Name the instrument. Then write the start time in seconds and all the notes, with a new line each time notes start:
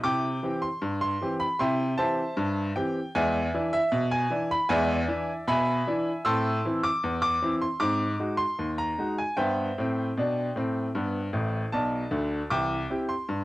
grand piano
0.04 C3 E4 G5 D6
0.43 E3 C4 G4
0.62 C6
0.81 G2
1.01 C6
1.21 E3 C4 G4
1.40 B5
1.59 C3 E4 E5 G5 C6
1.98 E3 C4 G4 C5 E5 A5
2.37 G2
2.76 E3 C4 G4 G5
3.15 E2 G#3 D5 E5 G#5
3.54 E3 D4 E4
3.73 E5
3.92 B2
4.12 G#5
4.31 E3 D4 E4
4.51 B5
4.69 E2 G#3 D5 E5 G#5
5.08 E3 D4 E4
5.47 B2 E5 G#5 B5
5.87 E3 D4 E4
6.25 A2 C4 A5 C6 E6
6.65 E3 C4 E4
6.83 D6
7.04 E2
7.22 D6
7.42 E3 C4 E4
7.61 C6
7.80 G#2 C4 D6
8.20 G#3 D#4 F#4
8.37 C6
8.59 D#2
8.78 A#5
8.98 G#3 D#4 F#4
9.18 G#5
9.37 G2 B3 C5 E5 G5
9.78 A2 C4
10.17 B2 D4
10.56 A2 C4
10.95 G2 B3
11.33 A1 A2
11.72 B1 B2 D5 A5
12.11 D2 D3
12.50 C2 E3 G5 D6
12.90 C4 E4 G4
13.09 C6
13.29 G2